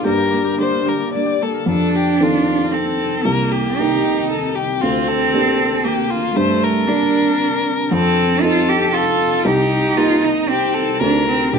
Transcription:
Already playing: ambient pad A#3 D4 G4, harp A#3 F4 D5
0.04 felt piano G2 G4, cello A#3, harp G4
0.08 violin A#4
0.17 harp D5
0.30 cello A#3, harp D5
0.44 harp G4
0.58 felt piano A#3 D4 G4, cello A#3, violin C5, harp D5
0.71 harp A#4
0.86 cello A#3, harp G4, violin A#4
0.99 harp D5
1.12 cello A#3, harp D5, violin D5
1.26 harp G4
1.41 cello A#3, violin A4
1.54 harp A#4
1.66 felt piano F2, ambient pad D#3 C4 A4, cello D4, violin A4
1.95 violin G4
2.20 felt piano D#3 C4 A4, violin F4
2.72 cello C4, violin A4
3.23 felt piano C2, cello A#3, ambient pad C4 G4, violin A#4
3.52 violin G4
3.79 felt piano A#3 D#4 G4, cello D#4
4.30 violin A4
4.55 violin G4
4.81 felt piano D2, cello C4, ambient pad D4, violin F4
5.08 violin A4
5.34 felt piano A#3 D4 G4
5.84 cello A#3, violin G4
6.10 violin F4
6.34 felt piano G2, cello A3, violin C5, ambient pad A5
6.64 violin A#4
6.88 felt piano A#3 D4 A#4, cello D4
7.91 felt piano F2, ambient pad C4 D#4, cello C4, violin A4
8.42 felt piano C4 D#4 A4, cello F4, violin A4
8.69 cello G4
8.93 violin F4, cello A4
9.45 felt piano C2, ambient pad C4 G4, violin D#4, cello G4
9.97 felt piano A#3 D#4 G4, cello F4
10.24 cello D#4
10.49 cello C4, violin G4
10.74 violin A4
11.00 felt piano D2, ambient pad D4, cello D4, violin A#4
11.28 cello C4
11.53 felt piano A#2 D4 G4, violin G4

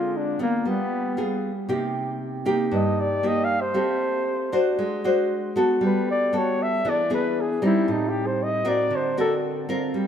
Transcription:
Already playing: nylon-string guitar D3 G#3 C4 F4, flugelhorn F4
0.17 flugelhorn D4
0.39 flugelhorn A#3, nylon-string guitar B3 F4
0.65 nylon-string guitar G3, flugelhorn B3
1.17 nylon-string guitar B3 F4 G#4
1.69 nylon-string guitar C3 A#3 D#4 G4
2.45 nylon-string guitar A#3 D#4 G4
2.71 nylon-string guitar G2, flugelhorn D#5
3.00 flugelhorn D5
3.23 nylon-string guitar A#3 D#4 G4, flugelhorn D#5
3.44 flugelhorn F5
3.61 flugelhorn C5
3.74 nylon-string guitar A3 C4 G4
4.52 nylon-string guitar D4 F#4 C5
4.79 nylon-string guitar G#3
5.04 nylon-string guitar D4 F#4 C5
5.56 nylon-string guitar B3 F#4 A4
5.81 nylon-string guitar G3
5.86 flugelhorn B4
6.11 flugelhorn D5
6.33 nylon-string guitar B3 F#4 A4
6.38 flugelhorn C#5
6.63 flugelhorn E5
6.85 nylon-string guitar E3 B3 D4 G#4
6.90 flugelhorn D5
7.10 nylon-string guitar B3 D4 G#4
7.14 flugelhorn B4
7.41 flugelhorn G#4
7.62 nylon-string guitar G3 C4 D#4, flugelhorn E4
7.88 nylon-string guitar A2
7.92 flugelhorn D#4
8.09 flugelhorn G4
8.26 flugelhorn C5
8.43 flugelhorn D#5
8.65 nylon-string guitar C4 F#4 A#4, flugelhorn D5
8.90 nylon-string guitar D3
8.96 flugelhorn C5
9.17 nylon-string guitar C4 F#4 A#4, flugelhorn A4
9.69 nylon-string guitar C4 F4 A#4
9.94 nylon-string guitar G3

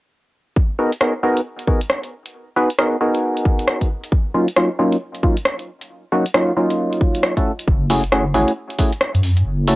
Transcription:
0.56 kick
0.79 synth stab B3 D#4 F#4 G#4 A#4
0.92 closed hi-hat
1.01 synth stab B3 D#4 F#4 G#4 A#4, cross-stick
1.23 synth stab B3 D#4 F#4 G#4 A#4
1.37 closed hi-hat
1.59 closed hi-hat
1.68 synth stab B3 D#4 F#4 G#4 A#4, kick
1.81 closed hi-hat
1.90 cross-stick
2.03 closed hi-hat
2.26 closed hi-hat
2.56 synth stab B3 D#4 F#4 G#4 B4
2.70 closed hi-hat
2.79 synth stab B3 D#4 F#4 G#4 A#4, cross-stick
3.01 synth stab B3 D#4 F#4 G#4 A#4
3.15 closed hi-hat
3.37 closed hi-hat
3.45 kick
3.59 closed hi-hat
3.68 cross-stick
3.81 kick, closed hi-hat
4.04 closed hi-hat
4.12 kick
4.34 synth stab F#3 A#3 C#4 D#4 F4
4.48 closed hi-hat
4.56 synth stab F#3 A#3 C#4 D#4 F4, cross-stick
4.79 synth stab F#3 A#3 C#4 D#4 F4
4.92 closed hi-hat
5.15 closed hi-hat
5.23 synth stab F#3 A#3 C#4 D#4 F4, kick
5.37 closed hi-hat
5.45 cross-stick
5.59 closed hi-hat
5.81 closed hi-hat
6.12 synth stab F#3 A#3 C#4 D#4 F#4
6.26 closed hi-hat
6.34 synth stab F#3 A#3 C#4 D#4 F4, cross-stick
6.57 synth stab F#3 A#3 C#4 D#4 F4
6.70 closed hi-hat
6.93 closed hi-hat
7.01 kick
7.15 closed hi-hat
7.23 cross-stick
7.37 synth stab A3 C#4 E4 F#4 A4, kick, closed hi-hat
7.59 closed hi-hat
7.67 wobble bass F#1, kick
7.90 synth stab A3 C#4 E4 F#4 G#4, open hi-hat
8.04 closed hi-hat
8.12 synth stab A3 C#4 E4 F#4 G#4, cross-stick
8.34 wobble bass A1, synth stab A3 C#4 E4 F#4 G#4, cross-stick, open hi-hat
8.48 closed hi-hat
8.70 closed hi-hat
8.79 synth stab A3 C#4 E4 F#4 G#4, kick, open hi-hat
8.93 closed hi-hat
9.01 cross-stick
9.15 wobble bass F#2, closed hi-hat
9.23 open hi-hat
9.37 closed hi-hat
9.45 wobble bass F#1
9.68 synth stab A3 C#4 E4 F#4 A4, open hi-hat

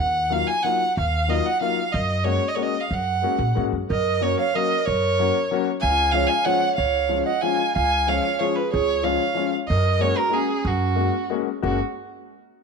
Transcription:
0.00 upright bass D#2, violin F#5
0.29 upright piano F#3 A#3 D#4 F4, violin F5
0.48 violin G#5
0.63 upright piano F#3 A#3 D#4 F4, violin F#5
0.97 upright bass D#2, violin F5
1.28 upright piano F#3 A#3 D#4 F4, violin D#5
1.46 violin F#5
1.60 upright piano F#3 A#3 D#4 F4, violin F5
1.93 upright bass F#2, violin D#5
2.24 upright piano G#3 A#3 C#4 F#4, violin C#5
2.48 violin D#5
2.55 upright piano G#3 A#3 C#4 F#4, violin C#5
2.63 violin D#5
2.81 violin F5
2.91 upright bass F#2, violin F#5
3.22 upright piano G#3 A#3 C#4 F#4
3.39 upright bass A#2
3.55 upright bass G#2, upright piano G#3 A#3 C#4 F#4
3.72 upright bass F#2
3.90 upright bass F#2, clarinet A#4, violin D#5
4.21 upright piano F#3 A#3 C#4 F#4, clarinet A#4, violin C#5
4.40 clarinet C#5, violin F5
4.55 upright piano F#3 A#3 C#4 F#4, clarinet A#4, violin D#5
4.85 upright bass F#2, clarinet A#4, violin C#5
5.19 upright piano F#3 A#3 C#4 F#4
5.51 upright piano F#3 A#3 C#4 F#4
5.81 upright bass C#2, clarinet F5, violin G#5
6.12 upright piano F3 G#3 C#4 F4, clarinet C#5, violin F5
6.27 clarinet F5, violin G#5
6.44 upright piano F3 G#3 C#4 F4, clarinet C#5, violin F#5
6.75 upright bass C#2, clarinet C#5, violin F5
7.09 upright piano F3 G#3 C#4 F4
7.26 clarinet D#5, violin F#5
7.42 upright piano F3 G#3 C#4 F4, clarinet F5, violin G#5
7.75 upright bass C#2, clarinet F5, violin G#5
8.07 upright piano F3 G#3 C#4 F4, clarinet C#5, violin F5
8.39 upright piano F3 G#3 C#4 F4, clarinet G#4, violin C#5
8.55 clarinet G#4, violin B4
8.72 upright bass C#2, clarinet G#4, violin C#5
9.03 upright piano F3 G#3 C#4 F4, clarinet C#5, violin F5
9.34 upright piano F3 G#3 C#4 F4
9.68 upright bass F#2, clarinet A#4, violin D#5
9.99 upright piano G#3 A#3 C#4 F#4, clarinet A#4, violin C#5
10.16 clarinet F#4, violin A#4
10.29 upright piano G#3 A#3 C#4 F#4, clarinet C#4
10.34 violin G#4
10.65 upright bass F#2, clarinet C#4, violin F#4
10.95 upright piano G#3 A#3 C#4 F#4
11.30 upright piano G#3 A#3 C#4 F#4
11.62 upright bass F#1, upright piano G#3 A#3 C#4 F#4, clarinet C#4, violin F#4

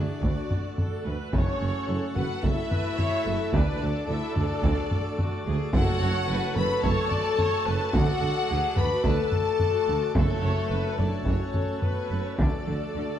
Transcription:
Already playing: pipe organ A3 F#4 F#5, french horn section D4, viola section G#4, violin section D5
0.22 cello section D2, double bass section D2, tuba D2, viola section F#4, taiko
0.51 taiko low-mid
0.78 viola section A4, taiko low-mid
1.06 double bass section D2, cello section D2, tuba D2, viola section B4
1.32 double bass section F#1, tuba F#1, cello section F#2, french horn section C#4, pipe organ F#4 A4 F#5, violin section C#5, viola section C#5, taiko
1.61 tuba F#1, double bass section F#1, cello section F#2
1.88 tuba F#1, double bass section F#1, cello section F#2, viola section A4
2.15 tuba F#1, double bass section F#1, cello section F#2, french horn section F#4, viola section B4, violin section F#5, taiko low-mid
2.43 tuba F#1, double bass section F#1, cello section F#2, french horn section E4, viola section A4, violin section E5, taiko
2.71 viola section B4, taiko low-mid
2.99 viola section C#5, taiko low-mid
3.25 tuba F#1, double bass section F#1, cello section F#2, viola section A4
3.53 tuba D2, cello section D2, double bass section D2, pipe organ A3 D5, french horn section D4, viola section B4, violin section D5, taiko
3.80 double bass section D2, tuba D2, cello section D2, viola section A4
4.08 double bass section D2, cello section D2, tuba D2, french horn section E4, violin section E5
4.35 double bass section D2, cello section D2, tuba D2, french horn section D4, violin section D5, taiko low-mid
4.62 double bass section D2, tuba D2, cello section D2, taiko
4.91 taiko low-mid
5.19 viola section F#4, taiko low-mid
5.47 double bass section D2, cello section D2, tuba D2, viola section G#4
5.73 double bass section F#1, tuba F#1, cello section F#2, timpani F#2, french horn section F#4, pipe organ F#4 A4 C#5, viola section A4, violin section F#5, taiko
6.01 double bass section F#1, tuba F#1, cello section F#2, viola section C#5
6.28 double bass section F#1, tuba F#1, cello section F#2, viola section B4
6.55 double bass section F#1, tuba F#1, cello section F#2, viola section A4, french horn section B4, violin section B5, taiko low-mid
6.83 double bass section F#1, tuba F#1, cello section F#2, french horn section A4, viola section C#5, violin section A5, taiko
7.10 viola section D5, taiko low-mid
7.38 viola section C#5, taiko low-mid
7.66 double bass section F#1, tuba F#1, cello section F#2, viola section B4
7.93 tuba D2, double bass section D2, cello section D2, pipe organ A3 D5, french horn section F#4, viola section A4, violin section F#5, taiko
8.21 double bass section D2, cello section D2, tuba D2
8.50 double bass section D2, cello section D2, tuba D2, viola section G#4
8.76 cello section D2, double bass section D2, tuba D2, viola section F#4, french horn section B4, violin section B5, taiko low-mid
9.04 cello section D2, double bass section D2, tuba D2, french horn section A4, viola section B4, violin section A5, taiko
9.32 viola section A4, taiko low-mid
9.60 viola section F#4, taiko low-mid
9.88 cello section D2, double bass section D2, tuba D2
10.15 double bass section F#1, tuba F#1, cello section F#2, timpani F#2, french horn section A3, pipe organ F#4 A4 C#5, viola section A4, violin section A4, taiko
10.42 double bass section F#1, tuba F#1, cello section F#2, viola section C#5
10.70 double bass section F#1, tuba F#1, cello section F#2, viola section B4
10.97 double bass section F#1, tuba F#1, cello section F#2, french horn section D4, viola section A4, violin section D5, taiko low-mid
11.23 double bass section F#1, tuba F#1, cello section F#2, french horn section C#4, viola section F#4, violin section C#5, taiko
11.28 violin section C#5
11.54 viola section A4, taiko low-mid
11.80 french horn section B3, viola section B4, violin section B4, taiko low-mid
12.10 double bass section F#1, tuba F#1, cello section F#2
12.23 french horn section C#4, violin section C#5
12.38 tuba D2, double bass section D2, cello section D3, pipe organ A3 D5, french horn section D4, viola section A4, violin section D5, taiko
12.67 double bass section D2, tuba D2, cello section D3
12.95 double bass section D2, tuba D2, cello section D3

